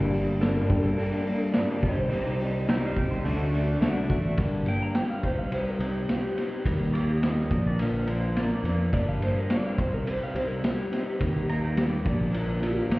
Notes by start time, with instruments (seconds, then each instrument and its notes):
Already playing: picked electric bass G1, steel-string acoustic guitar G2 D3 G3 A#3 D4 G4, clean electric guitar A#3 D4 G4
0.00 clean electric guitar G3
0.13 steel-string acoustic guitar G3 A#3 D4 G4, open hi-hat
0.40 steel-string acoustic guitar G2 D3 G3 A#3 D4 G4, electric slide guitar A#4, snare, open hi-hat, tambourine
0.68 picked electric bass G2, steel-string acoustic guitar G3 A#3 D4 G4, muted clean electric guitar stroke, kick, open hi-hat
0.80 clean electric guitar A#3 D4 G4, electric slide guitar A4
0.85 clean electric guitar G3
0.97 steel-string acoustic guitar G3 A#3 D4 G4, electric slide guitar A#4, open hi-hat
1.11 clean electric guitar G3 A#3 D4 G4
1.25 steel-string acoustic guitar G3 A#3 D4 G4, open hi-hat
1.41 electric slide guitar A4
1.52 steel-string acoustic guitar G2 D3 G3 A#3, electric slide guitar D5, snare, open hi-hat, tambourine
1.57 steel-string acoustic guitar D4 G4
1.68 clean electric guitar G3 A#3 D4 G4
1.81 picked electric bass C2, clean electric guitar C3 D#3 G3, steel-string acoustic guitar D#4 G4, electric slide guitar C5, kick, open hi-hat
1.85 steel-string acoustic guitar C4
1.95 clean electric guitar G3 D#4 G4
2.09 picked electric bass C2, steel-string acoustic guitar C3 G3 C4, clean electric guitar D#3, open hi-hat
2.13 steel-string acoustic guitar D#4 G4
2.24 clean electric guitar G3 D#4 G4
2.39 clean electric guitar D#3 G3, steel-string acoustic guitar D#4 G4, open hi-hat
2.43 steel-string acoustic guitar C4
2.67 steel-string acoustic guitar C3 G3 C4 D#4 G4, clean electric guitar D#3, pedal steel guitar G5, snare, open hi-hat, tambourine
2.85 pedal steel guitar F5
2.96 picked electric bass C2, steel-string acoustic guitar D#4 G4, pedal steel guitar G5, muted clean electric guitar stroke, kick, open hi-hat
3.00 steel-string acoustic guitar C4
3.09 clean electric guitar G3 D#4 G4, pedal steel guitar C5
3.24 picked electric bass D2, clean electric guitar D3, steel-string acoustic guitar A3 D4 F#4 A4, pedal steel guitar D4, open hi-hat
3.37 clean electric guitar A3 D4 F#4, pedal steel guitar C#4
3.52 clean electric guitar D3 A3, steel-string acoustic guitar F#4 A4, open hi-hat
3.56 steel-string acoustic guitar D4
3.67 pedal steel guitar D4
3.81 picked electric bass C2, steel-string acoustic guitar D3 A3 D4 F#4 A4, pedal steel guitar F#4, snare, open hi-hat, tambourine
3.94 clean electric guitar A3 D4 F#4
4.07 picked electric bass A1, clean electric guitar D3 A3, steel-string acoustic guitar D4 F#4 A4, kick, open hi-hat
4.22 clean electric guitar A3 D4 F#4
4.36 picked electric bass G1, steel-string acoustic guitar G2 D3 G3 A#3 D4 G4, kick, ride
4.65 steel-string acoustic guitar G3 A#3 D4 G4, electric slide guitar G5, ride
4.83 electric slide guitar A#5
4.94 steel-string acoustic guitar G3 A#3 D4 G4, electric slide guitar G5, snare, ride
5.10 electric slide guitar F5
5.23 picked electric bass C2, clean electric guitar C3, steel-string acoustic guitar C4 D#4 G4, electric slide guitar C5, kick, ride
5.39 electric slide guitar F5
5.50 steel-string acoustic guitar C3 G3 C4 D#4 G4, electric slide guitar C5, ride
5.69 electric slide guitar A#4
5.78 picked electric bass C2, steel-string acoustic guitar C4 D#4 G4, electric slide guitar G4, ride
6.09 steel-string acoustic guitar G3 C4 D#4 G4, electric slide guitar G4, snare, ride
6.37 steel-string acoustic guitar C4 D#4 G4, snare, ride
6.65 picked electric bass D#2, steel-string acoustic guitar D#3 G3 A#3 D#4 G4, kick, ride
6.94 steel-string acoustic guitar A#3 D#4 G4, pedal steel guitar D5, ride
7.09 pedal steel guitar D#5
7.23 steel-string acoustic guitar G3 A#3 D#4 G4, snare, ride
7.51 picked electric bass A#1, clean electric guitar A#2, steel-string acoustic guitar F3 A#3 D4 A#4, kick, ride
7.67 pedal steel guitar D5
7.79 steel-string acoustic guitar A#2 D3 F3 A#3 D4 A#4, pedal steel guitar F5, ride
8.06 steel-string acoustic guitar F3 A#3 D4 A#4, pedal steel guitar C5, ride
8.36 steel-string acoustic guitar F3 A#3 D4 A#4, pedal steel guitar D5, snare, ride
8.64 picked electric bass F2, steel-string acoustic guitar F3 A#3 D4 A#4, snare, ride
8.92 picked electric bass G1, steel-string acoustic guitar G2 D3 G3 A#3 D4 G4, electric slide guitar D5, kick, ride
9.09 electric slide guitar F5
9.20 steel-string acoustic guitar G3 A#3 D4 G4, electric slide guitar C5, ride
9.39 electric slide guitar A#4
9.49 steel-string acoustic guitar G3 A#3 D4 G4, snare, ride
9.53 electric slide guitar D5
9.67 electric slide guitar F5
9.77 picked electric bass C2, clean electric guitar C3, steel-string acoustic guitar C4 D#4 G4, electric slide guitar C5, kick, ride
9.94 electric slide guitar A#4
10.06 steel-string acoustic guitar C3 G3 C4 D#4 G4, electric slide guitar C5, ride
10.23 electric slide guitar F5
10.35 picked electric bass C2, steel-string acoustic guitar C4 D#4 G4, electric slide guitar C5, ride
10.47 electric slide guitar A#4
10.62 steel-string acoustic guitar G3 C4 D#4 G4, electric slide guitar G4, snare, ride
10.92 steel-string acoustic guitar C4 D#4 G4, snare, ride
11.19 picked electric bass D#2, steel-string acoustic guitar D#3 G3 A#3 D#4 G4, kick, ride
11.45 steel-string acoustic guitar A#3 D#4 G4, ride
11.50 pedal steel guitar A#5
11.64 pedal steel guitar G5
11.75 steel-string acoustic guitar G3 A#3 D#4 G4, pedal steel guitar D5, snare, ride
12.04 picked electric bass A#1, clean electric guitar A#2, steel-string acoustic guitar F3 A#3 D4 A#4, kick, ride
12.31 steel-string acoustic guitar A#2 D3 F3 A#3 D4 A#4, ride
12.60 steel-string acoustic guitar F3 A#3 D4 A#4, electric slide guitar G4, ride
12.76 electric slide guitar F4
12.88 picked electric bass A1, steel-string acoustic guitar F3 A#3 D4 A#4, snare, ride
12.93 electric slide guitar G4